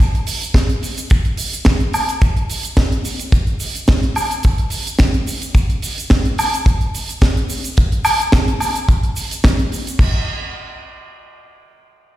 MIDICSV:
0, 0, Header, 1, 2, 480
1, 0, Start_track
1, 0, Tempo, 555556
1, 956, Time_signature, 4, 2, 24, 8
1, 10514, End_track
2, 0, Start_track
2, 0, Title_t, "Drums"
2, 0, Note_on_c, 9, 36, 121
2, 0, Note_on_c, 9, 82, 47
2, 85, Note_off_c, 9, 36, 0
2, 86, Note_off_c, 9, 82, 0
2, 128, Note_on_c, 9, 42, 44
2, 214, Note_off_c, 9, 42, 0
2, 231, Note_on_c, 9, 46, 124
2, 238, Note_on_c, 9, 82, 88
2, 317, Note_off_c, 9, 46, 0
2, 325, Note_off_c, 9, 82, 0
2, 362, Note_on_c, 9, 42, 58
2, 376, Note_on_c, 9, 82, 58
2, 448, Note_off_c, 9, 42, 0
2, 462, Note_off_c, 9, 82, 0
2, 470, Note_on_c, 9, 36, 127
2, 472, Note_on_c, 9, 38, 114
2, 477, Note_on_c, 9, 42, 69
2, 485, Note_on_c, 9, 82, 47
2, 556, Note_off_c, 9, 36, 0
2, 558, Note_off_c, 9, 38, 0
2, 563, Note_off_c, 9, 42, 0
2, 571, Note_off_c, 9, 82, 0
2, 600, Note_on_c, 9, 42, 47
2, 686, Note_off_c, 9, 42, 0
2, 715, Note_on_c, 9, 46, 99
2, 725, Note_on_c, 9, 82, 72
2, 802, Note_off_c, 9, 46, 0
2, 812, Note_off_c, 9, 82, 0
2, 842, Note_on_c, 9, 82, 63
2, 845, Note_on_c, 9, 42, 71
2, 929, Note_off_c, 9, 82, 0
2, 931, Note_off_c, 9, 42, 0
2, 950, Note_on_c, 9, 42, 70
2, 953, Note_on_c, 9, 82, 51
2, 959, Note_on_c, 9, 36, 123
2, 1037, Note_off_c, 9, 42, 0
2, 1040, Note_off_c, 9, 82, 0
2, 1046, Note_off_c, 9, 36, 0
2, 1080, Note_on_c, 9, 42, 43
2, 1166, Note_off_c, 9, 42, 0
2, 1187, Note_on_c, 9, 46, 118
2, 1201, Note_on_c, 9, 82, 87
2, 1273, Note_off_c, 9, 46, 0
2, 1287, Note_off_c, 9, 82, 0
2, 1323, Note_on_c, 9, 82, 62
2, 1327, Note_on_c, 9, 42, 66
2, 1410, Note_off_c, 9, 82, 0
2, 1414, Note_off_c, 9, 42, 0
2, 1425, Note_on_c, 9, 38, 115
2, 1427, Note_on_c, 9, 42, 66
2, 1435, Note_on_c, 9, 82, 46
2, 1437, Note_on_c, 9, 36, 127
2, 1511, Note_off_c, 9, 38, 0
2, 1514, Note_off_c, 9, 42, 0
2, 1521, Note_off_c, 9, 82, 0
2, 1523, Note_off_c, 9, 36, 0
2, 1557, Note_on_c, 9, 42, 43
2, 1643, Note_off_c, 9, 42, 0
2, 1670, Note_on_c, 9, 46, 101
2, 1677, Note_on_c, 9, 76, 63
2, 1681, Note_on_c, 9, 82, 93
2, 1757, Note_off_c, 9, 46, 0
2, 1763, Note_off_c, 9, 76, 0
2, 1767, Note_off_c, 9, 82, 0
2, 1803, Note_on_c, 9, 82, 60
2, 1804, Note_on_c, 9, 42, 62
2, 1889, Note_off_c, 9, 82, 0
2, 1890, Note_off_c, 9, 42, 0
2, 1913, Note_on_c, 9, 42, 63
2, 1916, Note_on_c, 9, 36, 127
2, 1921, Note_on_c, 9, 82, 52
2, 2000, Note_off_c, 9, 42, 0
2, 2002, Note_off_c, 9, 36, 0
2, 2007, Note_off_c, 9, 82, 0
2, 2044, Note_on_c, 9, 42, 46
2, 2131, Note_off_c, 9, 42, 0
2, 2156, Note_on_c, 9, 46, 102
2, 2164, Note_on_c, 9, 82, 86
2, 2242, Note_off_c, 9, 46, 0
2, 2250, Note_off_c, 9, 82, 0
2, 2275, Note_on_c, 9, 42, 62
2, 2285, Note_on_c, 9, 82, 58
2, 2361, Note_off_c, 9, 42, 0
2, 2371, Note_off_c, 9, 82, 0
2, 2391, Note_on_c, 9, 38, 117
2, 2392, Note_on_c, 9, 42, 65
2, 2393, Note_on_c, 9, 82, 45
2, 2394, Note_on_c, 9, 36, 127
2, 2477, Note_off_c, 9, 38, 0
2, 2479, Note_off_c, 9, 42, 0
2, 2480, Note_off_c, 9, 36, 0
2, 2480, Note_off_c, 9, 82, 0
2, 2523, Note_on_c, 9, 42, 48
2, 2609, Note_off_c, 9, 42, 0
2, 2634, Note_on_c, 9, 46, 86
2, 2637, Note_on_c, 9, 82, 84
2, 2720, Note_off_c, 9, 46, 0
2, 2723, Note_off_c, 9, 82, 0
2, 2760, Note_on_c, 9, 42, 72
2, 2763, Note_on_c, 9, 82, 61
2, 2846, Note_off_c, 9, 42, 0
2, 2849, Note_off_c, 9, 82, 0
2, 2871, Note_on_c, 9, 36, 112
2, 2876, Note_on_c, 9, 42, 64
2, 2878, Note_on_c, 9, 82, 52
2, 2958, Note_off_c, 9, 36, 0
2, 2962, Note_off_c, 9, 42, 0
2, 2964, Note_off_c, 9, 82, 0
2, 2998, Note_on_c, 9, 42, 45
2, 3085, Note_off_c, 9, 42, 0
2, 3109, Note_on_c, 9, 46, 103
2, 3113, Note_on_c, 9, 82, 87
2, 3195, Note_off_c, 9, 46, 0
2, 3199, Note_off_c, 9, 82, 0
2, 3240, Note_on_c, 9, 42, 65
2, 3246, Note_on_c, 9, 82, 56
2, 3327, Note_off_c, 9, 42, 0
2, 3333, Note_off_c, 9, 82, 0
2, 3350, Note_on_c, 9, 38, 117
2, 3350, Note_on_c, 9, 42, 71
2, 3351, Note_on_c, 9, 82, 50
2, 3359, Note_on_c, 9, 36, 124
2, 3437, Note_off_c, 9, 38, 0
2, 3437, Note_off_c, 9, 42, 0
2, 3437, Note_off_c, 9, 82, 0
2, 3445, Note_off_c, 9, 36, 0
2, 3482, Note_on_c, 9, 42, 48
2, 3568, Note_off_c, 9, 42, 0
2, 3590, Note_on_c, 9, 46, 98
2, 3594, Note_on_c, 9, 76, 60
2, 3603, Note_on_c, 9, 82, 87
2, 3676, Note_off_c, 9, 46, 0
2, 3681, Note_off_c, 9, 76, 0
2, 3690, Note_off_c, 9, 82, 0
2, 3723, Note_on_c, 9, 42, 64
2, 3725, Note_on_c, 9, 82, 57
2, 3809, Note_off_c, 9, 42, 0
2, 3811, Note_off_c, 9, 82, 0
2, 3829, Note_on_c, 9, 42, 67
2, 3835, Note_on_c, 9, 82, 57
2, 3843, Note_on_c, 9, 36, 113
2, 3915, Note_off_c, 9, 42, 0
2, 3921, Note_off_c, 9, 82, 0
2, 3929, Note_off_c, 9, 36, 0
2, 3958, Note_on_c, 9, 42, 46
2, 4045, Note_off_c, 9, 42, 0
2, 4063, Note_on_c, 9, 46, 108
2, 4074, Note_on_c, 9, 82, 85
2, 4149, Note_off_c, 9, 46, 0
2, 4160, Note_off_c, 9, 82, 0
2, 4206, Note_on_c, 9, 42, 62
2, 4209, Note_on_c, 9, 82, 54
2, 4292, Note_off_c, 9, 42, 0
2, 4295, Note_off_c, 9, 82, 0
2, 4308, Note_on_c, 9, 38, 110
2, 4309, Note_on_c, 9, 42, 66
2, 4313, Note_on_c, 9, 82, 56
2, 4319, Note_on_c, 9, 36, 116
2, 4394, Note_off_c, 9, 38, 0
2, 4395, Note_off_c, 9, 42, 0
2, 4399, Note_off_c, 9, 82, 0
2, 4405, Note_off_c, 9, 36, 0
2, 4441, Note_on_c, 9, 42, 45
2, 4528, Note_off_c, 9, 42, 0
2, 4555, Note_on_c, 9, 46, 97
2, 4559, Note_on_c, 9, 82, 86
2, 4642, Note_off_c, 9, 46, 0
2, 4645, Note_off_c, 9, 82, 0
2, 4680, Note_on_c, 9, 42, 78
2, 4687, Note_on_c, 9, 82, 67
2, 4767, Note_off_c, 9, 42, 0
2, 4773, Note_off_c, 9, 82, 0
2, 4791, Note_on_c, 9, 42, 70
2, 4792, Note_on_c, 9, 36, 110
2, 4800, Note_on_c, 9, 82, 50
2, 4877, Note_off_c, 9, 42, 0
2, 4879, Note_off_c, 9, 36, 0
2, 4887, Note_off_c, 9, 82, 0
2, 4922, Note_on_c, 9, 42, 53
2, 5009, Note_off_c, 9, 42, 0
2, 5032, Note_on_c, 9, 46, 105
2, 5042, Note_on_c, 9, 82, 90
2, 5118, Note_off_c, 9, 46, 0
2, 5129, Note_off_c, 9, 82, 0
2, 5166, Note_on_c, 9, 42, 72
2, 5177, Note_on_c, 9, 82, 56
2, 5252, Note_off_c, 9, 42, 0
2, 5264, Note_off_c, 9, 82, 0
2, 5271, Note_on_c, 9, 38, 111
2, 5279, Note_on_c, 9, 36, 117
2, 5279, Note_on_c, 9, 42, 65
2, 5279, Note_on_c, 9, 82, 57
2, 5357, Note_off_c, 9, 38, 0
2, 5365, Note_off_c, 9, 36, 0
2, 5365, Note_off_c, 9, 82, 0
2, 5366, Note_off_c, 9, 42, 0
2, 5401, Note_on_c, 9, 42, 46
2, 5488, Note_off_c, 9, 42, 0
2, 5515, Note_on_c, 9, 46, 105
2, 5520, Note_on_c, 9, 76, 67
2, 5524, Note_on_c, 9, 82, 90
2, 5602, Note_off_c, 9, 46, 0
2, 5606, Note_off_c, 9, 76, 0
2, 5610, Note_off_c, 9, 82, 0
2, 5650, Note_on_c, 9, 42, 64
2, 5653, Note_on_c, 9, 82, 60
2, 5737, Note_off_c, 9, 42, 0
2, 5740, Note_off_c, 9, 82, 0
2, 5754, Note_on_c, 9, 36, 111
2, 5762, Note_on_c, 9, 42, 66
2, 5765, Note_on_c, 9, 82, 49
2, 5841, Note_off_c, 9, 36, 0
2, 5849, Note_off_c, 9, 42, 0
2, 5852, Note_off_c, 9, 82, 0
2, 5882, Note_on_c, 9, 42, 42
2, 5969, Note_off_c, 9, 42, 0
2, 6001, Note_on_c, 9, 46, 101
2, 6006, Note_on_c, 9, 82, 88
2, 6087, Note_off_c, 9, 46, 0
2, 6092, Note_off_c, 9, 82, 0
2, 6127, Note_on_c, 9, 42, 65
2, 6130, Note_on_c, 9, 82, 63
2, 6214, Note_off_c, 9, 42, 0
2, 6216, Note_off_c, 9, 82, 0
2, 6234, Note_on_c, 9, 42, 67
2, 6237, Note_on_c, 9, 36, 127
2, 6238, Note_on_c, 9, 38, 112
2, 6320, Note_off_c, 9, 42, 0
2, 6323, Note_off_c, 9, 36, 0
2, 6324, Note_off_c, 9, 38, 0
2, 6369, Note_on_c, 9, 42, 46
2, 6455, Note_off_c, 9, 42, 0
2, 6477, Note_on_c, 9, 46, 82
2, 6478, Note_on_c, 9, 82, 87
2, 6563, Note_off_c, 9, 46, 0
2, 6565, Note_off_c, 9, 82, 0
2, 6603, Note_on_c, 9, 42, 68
2, 6607, Note_on_c, 9, 82, 67
2, 6689, Note_off_c, 9, 42, 0
2, 6693, Note_off_c, 9, 82, 0
2, 6713, Note_on_c, 9, 42, 71
2, 6720, Note_on_c, 9, 36, 120
2, 6721, Note_on_c, 9, 82, 54
2, 6800, Note_off_c, 9, 42, 0
2, 6806, Note_off_c, 9, 36, 0
2, 6808, Note_off_c, 9, 82, 0
2, 6843, Note_on_c, 9, 42, 54
2, 6930, Note_off_c, 9, 42, 0
2, 6952, Note_on_c, 9, 46, 110
2, 6952, Note_on_c, 9, 76, 88
2, 6956, Note_on_c, 9, 82, 99
2, 7038, Note_off_c, 9, 76, 0
2, 7039, Note_off_c, 9, 46, 0
2, 7043, Note_off_c, 9, 82, 0
2, 7083, Note_on_c, 9, 42, 67
2, 7091, Note_on_c, 9, 82, 62
2, 7169, Note_off_c, 9, 42, 0
2, 7178, Note_off_c, 9, 82, 0
2, 7191, Note_on_c, 9, 38, 127
2, 7195, Note_on_c, 9, 42, 67
2, 7198, Note_on_c, 9, 36, 116
2, 7200, Note_on_c, 9, 82, 55
2, 7277, Note_off_c, 9, 38, 0
2, 7281, Note_off_c, 9, 42, 0
2, 7285, Note_off_c, 9, 36, 0
2, 7287, Note_off_c, 9, 82, 0
2, 7326, Note_on_c, 9, 42, 46
2, 7412, Note_off_c, 9, 42, 0
2, 7434, Note_on_c, 9, 76, 53
2, 7435, Note_on_c, 9, 46, 93
2, 7445, Note_on_c, 9, 82, 94
2, 7520, Note_off_c, 9, 76, 0
2, 7522, Note_off_c, 9, 46, 0
2, 7531, Note_off_c, 9, 82, 0
2, 7564, Note_on_c, 9, 42, 66
2, 7565, Note_on_c, 9, 82, 59
2, 7651, Note_off_c, 9, 42, 0
2, 7651, Note_off_c, 9, 82, 0
2, 7677, Note_on_c, 9, 36, 118
2, 7681, Note_on_c, 9, 42, 64
2, 7683, Note_on_c, 9, 82, 50
2, 7764, Note_off_c, 9, 36, 0
2, 7768, Note_off_c, 9, 42, 0
2, 7769, Note_off_c, 9, 82, 0
2, 7805, Note_on_c, 9, 42, 44
2, 7892, Note_off_c, 9, 42, 0
2, 7918, Note_on_c, 9, 46, 101
2, 7918, Note_on_c, 9, 82, 92
2, 8004, Note_off_c, 9, 46, 0
2, 8005, Note_off_c, 9, 82, 0
2, 8046, Note_on_c, 9, 42, 73
2, 8051, Note_on_c, 9, 82, 61
2, 8132, Note_off_c, 9, 42, 0
2, 8137, Note_off_c, 9, 82, 0
2, 8155, Note_on_c, 9, 38, 126
2, 8161, Note_on_c, 9, 36, 126
2, 8164, Note_on_c, 9, 42, 70
2, 8170, Note_on_c, 9, 82, 53
2, 8242, Note_off_c, 9, 38, 0
2, 8247, Note_off_c, 9, 36, 0
2, 8250, Note_off_c, 9, 42, 0
2, 8256, Note_off_c, 9, 82, 0
2, 8288, Note_on_c, 9, 42, 47
2, 8375, Note_off_c, 9, 42, 0
2, 8399, Note_on_c, 9, 46, 77
2, 8410, Note_on_c, 9, 82, 73
2, 8485, Note_off_c, 9, 46, 0
2, 8496, Note_off_c, 9, 82, 0
2, 8529, Note_on_c, 9, 42, 70
2, 8535, Note_on_c, 9, 82, 68
2, 8615, Note_off_c, 9, 42, 0
2, 8622, Note_off_c, 9, 82, 0
2, 8633, Note_on_c, 9, 36, 120
2, 8643, Note_on_c, 9, 49, 82
2, 8719, Note_off_c, 9, 36, 0
2, 8730, Note_off_c, 9, 49, 0
2, 10514, End_track
0, 0, End_of_file